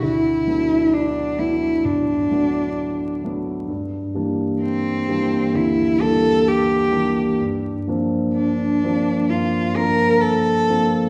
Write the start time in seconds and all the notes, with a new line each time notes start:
0.02 D2 E4
0.47 F#3 A3 B3 D4
0.93 D4
1.38 F#3 A3 B3 D4 E4
1.85 A2 D4
2.31 F#3 A3 B3 D4
3.24 F#3 A3 B3 D4
3.68 G2
4.15 E3 G3 A#3 D4
4.62 C4
5.08 E3 G3 A#3 D4
5.54 D2 E4
6.00 E3 G3 A#3 D4 A4
6.48 G4
6.91 E3 G3 A#3 D4
7.38 G2
7.87 F3 A#3 C4 D4
8.35 D4
8.84 F3 A#3 C4 D4
9.30 G2 F4
9.76 F3 A#3 C4 D4 A#4
10.21 A4
10.69 F3 A#3 C4 D4